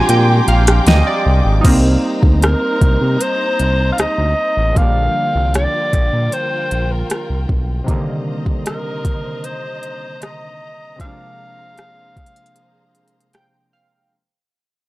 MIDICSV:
0, 0, Header, 1, 6, 480
1, 0, Start_track
1, 0, Key_signature, -3, "minor"
1, 0, Tempo, 779221
1, 1013, Time_signature, 4, 2, 24, 8
1, 9167, End_track
2, 0, Start_track
2, 0, Title_t, "Alto saxophone"
2, 0, Program_c, 0, 65
2, 0, Note_on_c, 0, 65, 125
2, 512, Note_off_c, 0, 65, 0
2, 1498, Note_on_c, 0, 70, 93
2, 1980, Note_on_c, 0, 72, 97
2, 1989, Note_off_c, 0, 70, 0
2, 2411, Note_off_c, 0, 72, 0
2, 2415, Note_on_c, 0, 77, 72
2, 2461, Note_on_c, 0, 75, 93
2, 2471, Note_off_c, 0, 77, 0
2, 2939, Note_on_c, 0, 77, 112
2, 2948, Note_off_c, 0, 75, 0
2, 3416, Note_off_c, 0, 77, 0
2, 3422, Note_on_c, 0, 74, 104
2, 3901, Note_on_c, 0, 72, 94
2, 3910, Note_off_c, 0, 74, 0
2, 4261, Note_on_c, 0, 70, 75
2, 4270, Note_off_c, 0, 72, 0
2, 4617, Note_off_c, 0, 70, 0
2, 5340, Note_on_c, 0, 70, 88
2, 5819, Note_on_c, 0, 72, 95
2, 5828, Note_off_c, 0, 70, 0
2, 6300, Note_on_c, 0, 75, 91
2, 6309, Note_off_c, 0, 72, 0
2, 6777, Note_off_c, 0, 75, 0
2, 6780, Note_on_c, 0, 77, 113
2, 8432, Note_off_c, 0, 77, 0
2, 9167, End_track
3, 0, Start_track
3, 0, Title_t, "String section"
3, 0, Program_c, 1, 48
3, 0, Note_on_c, 1, 67, 81
3, 0, Note_on_c, 1, 79, 78
3, 0, Note_on_c, 1, 84, 78
3, 0, Note_on_c, 1, 86, 90
3, 988, Note_off_c, 1, 84, 0
3, 989, Note_off_c, 1, 86, 0
3, 994, Note_off_c, 1, 67, 0
3, 995, Note_off_c, 1, 79, 0
3, 1013, Note_on_c, 1, 72, 67
3, 1013, Note_on_c, 1, 82, 84
3, 1014, Note_on_c, 1, 63, 80
3, 2914, Note_off_c, 1, 72, 0
3, 2914, Note_off_c, 1, 82, 0
3, 2915, Note_off_c, 1, 63, 0
3, 2934, Note_on_c, 1, 65, 80
3, 2934, Note_on_c, 1, 70, 67
3, 2934, Note_on_c, 1, 79, 83
3, 4834, Note_off_c, 1, 70, 0
3, 4834, Note_off_c, 1, 79, 0
3, 4835, Note_off_c, 1, 65, 0
3, 4855, Note_on_c, 1, 82, 83
3, 4856, Note_on_c, 1, 72, 69
3, 4856, Note_on_c, 1, 75, 75
3, 6755, Note_off_c, 1, 72, 0
3, 6755, Note_off_c, 1, 75, 0
3, 6771, Note_on_c, 1, 68, 73
3, 6771, Note_on_c, 1, 72, 68
3, 8669, Note_off_c, 1, 82, 0
3, 8673, Note_off_c, 1, 68, 0
3, 8673, Note_off_c, 1, 72, 0
3, 9167, End_track
4, 0, Start_track
4, 0, Title_t, "Synth keys"
4, 0, Program_c, 2, 88
4, 0, Control_c, 2, 64, 127
4, 0, Note_on_c, 2, 53, 68
4, 0, Note_on_c, 2, 55, 64
4, 0, Note_on_c, 2, 56, 64
4, 0, Note_on_c, 2, 60, 65
4, 0, Note_on_c, 2, 62, 77
4, 0, Note_on_c, 2, 80, 77
4, 0, Note_on_c, 2, 82, 76
4, 59, Note_on_c, 2, 79, 79
4, 280, Note_off_c, 2, 79, 0
4, 298, Note_on_c, 2, 77, 73
4, 519, Note_off_c, 2, 77, 0
4, 539, Note_on_c, 2, 75, 78
4, 648, Note_off_c, 2, 75, 0
4, 659, Note_on_c, 2, 74, 75
4, 977, Note_off_c, 2, 53, 0
4, 984, Note_off_c, 2, 55, 0
4, 991, Note_off_c, 2, 56, 0
4, 991, Note_off_c, 2, 74, 0
4, 993, Note_on_c, 2, 63, 80
4, 998, Note_off_c, 2, 60, 0
4, 1004, Note_off_c, 2, 62, 0
4, 1006, Note_on_c, 2, 55, 67
4, 1019, Note_on_c, 2, 58, 73
4, 1022, Control_c, 2, 64, 0
4, 1025, Note_off_c, 2, 82, 0
4, 1027, Note_off_c, 2, 80, 0
4, 1033, Note_on_c, 2, 60, 70
4, 1146, Control_c, 2, 64, 127
4, 2899, Note_off_c, 2, 63, 0
4, 2905, Note_off_c, 2, 55, 0
4, 2911, Note_off_c, 2, 58, 0
4, 2913, Note_on_c, 2, 50, 62
4, 2918, Note_off_c, 2, 60, 0
4, 2926, Note_on_c, 2, 53, 58
4, 2940, Note_on_c, 2, 55, 59
4, 2942, Control_c, 2, 64, 0
4, 2954, Note_on_c, 2, 58, 57
4, 2966, Note_on_c, 2, 62, 69
4, 3046, Control_c, 2, 64, 127
4, 4819, Note_off_c, 2, 50, 0
4, 4825, Note_off_c, 2, 53, 0
4, 4831, Note_on_c, 2, 48, 76
4, 4832, Note_off_c, 2, 55, 0
4, 4839, Note_off_c, 2, 58, 0
4, 4845, Note_off_c, 2, 62, 0
4, 4845, Note_on_c, 2, 51, 70
4, 4859, Note_on_c, 2, 55, 71
4, 4862, Control_c, 2, 64, 0
4, 4871, Note_on_c, 2, 58, 70
4, 4885, Note_on_c, 2, 50, 84
4, 4969, Control_c, 2, 64, 127
4, 6738, Note_off_c, 2, 48, 0
4, 6745, Note_off_c, 2, 51, 0
4, 6752, Note_off_c, 2, 55, 0
4, 6753, Note_on_c, 2, 48, 60
4, 6758, Note_off_c, 2, 58, 0
4, 6765, Note_off_c, 2, 50, 0
4, 6766, Note_on_c, 2, 53, 57
4, 6779, Note_on_c, 2, 56, 59
4, 6781, Control_c, 2, 64, 0
4, 6793, Note_on_c, 2, 58, 58
4, 6806, Note_on_c, 2, 62, 71
4, 6881, Control_c, 2, 64, 127
4, 8217, Note_on_c, 2, 79, 64
4, 8439, Note_off_c, 2, 79, 0
4, 8459, Note_on_c, 2, 77, 65
4, 8659, Note_off_c, 2, 48, 0
4, 8665, Note_off_c, 2, 53, 0
4, 8672, Note_off_c, 2, 56, 0
4, 8679, Note_off_c, 2, 58, 0
4, 8680, Note_off_c, 2, 77, 0
4, 8685, Note_off_c, 2, 62, 0
4, 8702, Control_c, 2, 64, 0
4, 9167, End_track
5, 0, Start_track
5, 0, Title_t, "Analog synth bass"
5, 0, Program_c, 3, 38
5, 55, Note_on_c, 3, 46, 108
5, 252, Note_off_c, 3, 46, 0
5, 295, Note_on_c, 3, 34, 98
5, 492, Note_off_c, 3, 34, 0
5, 534, Note_on_c, 3, 38, 95
5, 632, Note_off_c, 3, 38, 0
5, 776, Note_on_c, 3, 36, 97
5, 874, Note_off_c, 3, 36, 0
5, 894, Note_on_c, 3, 32, 90
5, 992, Note_off_c, 3, 32, 0
5, 1015, Note_on_c, 3, 36, 109
5, 1211, Note_off_c, 3, 36, 0
5, 1374, Note_on_c, 3, 38, 94
5, 1571, Note_off_c, 3, 38, 0
5, 1734, Note_on_c, 3, 36, 85
5, 1832, Note_off_c, 3, 36, 0
5, 1856, Note_on_c, 3, 48, 93
5, 1954, Note_off_c, 3, 48, 0
5, 2216, Note_on_c, 3, 36, 91
5, 2412, Note_off_c, 3, 36, 0
5, 2456, Note_on_c, 3, 38, 49
5, 2504, Note_off_c, 3, 38, 0
5, 2576, Note_on_c, 3, 38, 92
5, 2674, Note_off_c, 3, 38, 0
5, 2816, Note_on_c, 3, 33, 93
5, 2913, Note_off_c, 3, 33, 0
5, 2934, Note_on_c, 3, 34, 114
5, 3131, Note_off_c, 3, 34, 0
5, 3296, Note_on_c, 3, 36, 92
5, 3492, Note_off_c, 3, 36, 0
5, 3654, Note_on_c, 3, 34, 80
5, 3753, Note_off_c, 3, 34, 0
5, 3776, Note_on_c, 3, 46, 93
5, 3873, Note_off_c, 3, 46, 0
5, 4135, Note_on_c, 3, 34, 94
5, 4332, Note_off_c, 3, 34, 0
5, 4496, Note_on_c, 3, 36, 87
5, 4593, Note_off_c, 3, 36, 0
5, 4615, Note_on_c, 3, 35, 99
5, 4812, Note_off_c, 3, 35, 0
5, 9167, End_track
6, 0, Start_track
6, 0, Title_t, "Drums"
6, 54, Note_on_c, 9, 42, 79
6, 116, Note_off_c, 9, 42, 0
6, 294, Note_on_c, 9, 42, 41
6, 356, Note_off_c, 9, 42, 0
6, 414, Note_on_c, 9, 42, 74
6, 419, Note_on_c, 9, 37, 100
6, 476, Note_off_c, 9, 42, 0
6, 481, Note_off_c, 9, 37, 0
6, 533, Note_on_c, 9, 42, 75
6, 542, Note_on_c, 9, 38, 108
6, 595, Note_off_c, 9, 42, 0
6, 603, Note_off_c, 9, 38, 0
6, 1014, Note_on_c, 9, 36, 112
6, 1014, Note_on_c, 9, 42, 75
6, 1014, Note_on_c, 9, 49, 90
6, 1075, Note_off_c, 9, 36, 0
6, 1075, Note_off_c, 9, 49, 0
6, 1076, Note_off_c, 9, 42, 0
6, 1372, Note_on_c, 9, 36, 84
6, 1434, Note_off_c, 9, 36, 0
6, 1493, Note_on_c, 9, 42, 69
6, 1501, Note_on_c, 9, 37, 111
6, 1555, Note_off_c, 9, 42, 0
6, 1562, Note_off_c, 9, 37, 0
6, 1734, Note_on_c, 9, 36, 94
6, 1734, Note_on_c, 9, 42, 66
6, 1795, Note_off_c, 9, 36, 0
6, 1795, Note_off_c, 9, 42, 0
6, 1975, Note_on_c, 9, 42, 70
6, 2036, Note_off_c, 9, 42, 0
6, 2214, Note_on_c, 9, 42, 59
6, 2275, Note_off_c, 9, 42, 0
6, 2453, Note_on_c, 9, 42, 68
6, 2462, Note_on_c, 9, 37, 98
6, 2515, Note_off_c, 9, 42, 0
6, 2523, Note_off_c, 9, 37, 0
6, 2934, Note_on_c, 9, 36, 105
6, 2935, Note_on_c, 9, 42, 71
6, 2995, Note_off_c, 9, 36, 0
6, 2997, Note_off_c, 9, 42, 0
6, 3414, Note_on_c, 9, 42, 67
6, 3421, Note_on_c, 9, 37, 105
6, 3475, Note_off_c, 9, 42, 0
6, 3483, Note_off_c, 9, 37, 0
6, 3654, Note_on_c, 9, 36, 87
6, 3654, Note_on_c, 9, 42, 66
6, 3715, Note_off_c, 9, 42, 0
6, 3716, Note_off_c, 9, 36, 0
6, 3895, Note_on_c, 9, 42, 72
6, 3957, Note_off_c, 9, 42, 0
6, 4135, Note_on_c, 9, 42, 58
6, 4196, Note_off_c, 9, 42, 0
6, 4373, Note_on_c, 9, 42, 68
6, 4382, Note_on_c, 9, 37, 98
6, 4435, Note_off_c, 9, 42, 0
6, 4443, Note_off_c, 9, 37, 0
6, 4615, Note_on_c, 9, 36, 87
6, 4676, Note_off_c, 9, 36, 0
6, 4854, Note_on_c, 9, 36, 109
6, 4855, Note_on_c, 9, 42, 69
6, 4916, Note_off_c, 9, 36, 0
6, 4916, Note_off_c, 9, 42, 0
6, 5213, Note_on_c, 9, 36, 87
6, 5274, Note_off_c, 9, 36, 0
6, 5333, Note_on_c, 9, 42, 66
6, 5340, Note_on_c, 9, 37, 102
6, 5395, Note_off_c, 9, 42, 0
6, 5402, Note_off_c, 9, 37, 0
6, 5574, Note_on_c, 9, 36, 91
6, 5574, Note_on_c, 9, 42, 66
6, 5635, Note_off_c, 9, 36, 0
6, 5635, Note_off_c, 9, 42, 0
6, 5815, Note_on_c, 9, 42, 70
6, 5876, Note_off_c, 9, 42, 0
6, 6054, Note_on_c, 9, 42, 56
6, 6116, Note_off_c, 9, 42, 0
6, 6294, Note_on_c, 9, 42, 67
6, 6302, Note_on_c, 9, 37, 100
6, 6355, Note_off_c, 9, 42, 0
6, 6364, Note_off_c, 9, 37, 0
6, 6774, Note_on_c, 9, 36, 106
6, 6775, Note_on_c, 9, 42, 69
6, 6836, Note_off_c, 9, 36, 0
6, 6837, Note_off_c, 9, 42, 0
6, 7254, Note_on_c, 9, 42, 63
6, 7261, Note_on_c, 9, 37, 103
6, 7315, Note_off_c, 9, 42, 0
6, 7323, Note_off_c, 9, 37, 0
6, 7494, Note_on_c, 9, 36, 87
6, 7495, Note_on_c, 9, 42, 55
6, 7554, Note_off_c, 9, 42, 0
6, 7554, Note_on_c, 9, 42, 57
6, 7556, Note_off_c, 9, 36, 0
6, 7615, Note_off_c, 9, 42, 0
6, 7615, Note_on_c, 9, 42, 51
6, 7675, Note_off_c, 9, 42, 0
6, 7675, Note_on_c, 9, 42, 53
6, 7735, Note_off_c, 9, 42, 0
6, 7735, Note_on_c, 9, 42, 68
6, 7797, Note_off_c, 9, 42, 0
6, 7976, Note_on_c, 9, 42, 48
6, 8037, Note_off_c, 9, 42, 0
6, 8055, Note_on_c, 9, 42, 48
6, 8116, Note_off_c, 9, 42, 0
6, 8134, Note_on_c, 9, 42, 52
6, 8196, Note_off_c, 9, 42, 0
6, 8213, Note_on_c, 9, 42, 64
6, 8222, Note_on_c, 9, 37, 93
6, 8275, Note_off_c, 9, 42, 0
6, 8284, Note_off_c, 9, 37, 0
6, 9167, End_track
0, 0, End_of_file